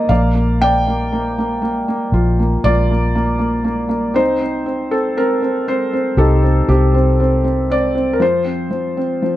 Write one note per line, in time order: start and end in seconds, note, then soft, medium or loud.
0.00 0.10 A#3 soft
0.00 0.12 F4 medium
0.00 0.12 A#4 medium
0.00 0.12 C5 medium
0.00 0.10 D5 medium
0.00 0.12 D#5 medium
0.09 1.83 A#1 medium
0.09 0.33 A#3 medium
0.09 0.61 D5 medium
0.09 0.62 F5 medium
0.35 0.59 A#3 soft
0.61 0.86 A#3 soft
0.61 2.61 D5 medium
0.61 2.70 G5 loud
0.87 1.11 A#3 soft
1.12 1.37 A#3 soft
1.38 1.60 A#3 soft
1.62 1.87 A#3 soft
1.88 2.38 A#3 soft
2.12 2.56 A#1 medium
2.12 2.64 F4 medium
2.39 2.64 A#3 soft
2.64 4.15 A#1 medium
2.64 2.89 A#3 soft
2.64 4.12 F4 medium
2.64 4.20 D5 medium
2.91 3.14 A#3 soft
3.15 3.37 A#3 soft
3.39 3.63 A#3 soft
3.64 3.87 A#3 soft
3.89 4.14 A#3 soft
4.14 5.87 C2 medium
4.14 4.40 C4 medium
4.14 6.14 D#4 medium
4.14 4.93 C5 medium
4.41 4.64 C4 soft
4.66 4.90 C4 soft
4.91 5.16 C4 soft
4.91 5.17 A4 medium
5.17 5.41 C4 soft
5.17 5.69 A#4 medium
5.42 5.66 C4 soft
5.68 5.92 C4 soft
5.68 6.20 C5 medium
5.93 6.41 C4 soft
6.17 6.60 C2 medium
6.17 8.17 D#4 soft
6.17 6.67 G4 medium
6.17 6.70 A4 medium
6.43 6.68 C4 soft
6.68 8.20 C2 medium
6.68 6.93 C4 soft
6.68 7.73 G4 medium
6.94 7.18 C4 soft
7.20 7.43 C4 medium
7.44 7.69 C4 soft
7.70 7.94 C4 soft
7.70 8.16 D5 medium
7.95 8.20 C4 soft
8.13 8.20 A#4 medium
8.20 9.37 F2 medium
8.20 8.69 F3 medium
8.20 9.37 F4 medium
8.20 9.37 C5 medium
8.45 8.96 C4 soft
8.71 9.21 F3 soft
8.97 9.37 C4 soft
9.22 9.37 F3 soft